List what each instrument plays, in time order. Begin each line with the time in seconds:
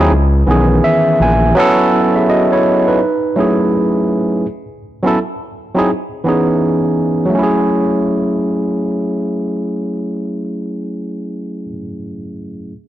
Already playing: tine electric piano F#3 C4
0.00 tine electric piano D#4 E4 G#4
0.11 analog synth bass C#2
0.47 analog synth bass B1, tine electric piano D#3 E3 B3 C#4
0.51 tine electric piano G#4
0.84 tine electric piano E5
1.20 analog synth bass A#1, tine electric piano G#5
1.55 tine electric piano F#3 B3 C#4 E4
1.60 tine electric piano A4
2.15 tine electric piano G#4 E5
2.30 tine electric piano F#4 D#5
2.52 tine electric piano E4 C#5
2.88 tine electric piano D#4 B4
3.36 tine electric piano F#3 A3 C#4 E4
3.40 tine electric piano G#4
5.03 tine electric piano F#3 B3 C#4 E4
5.07 tine electric piano A4
5.74 tine electric piano F#3 C4 D#4 E4
5.79 tine electric piano G#4
6.24 tine electric piano E3 B3 C#4 D#4
6.29 tine electric piano G#4
7.25 tine electric piano F#3
7.30 tine electric piano A3
7.35 tine electric piano C#4 E4
7.43 tine electric piano G#4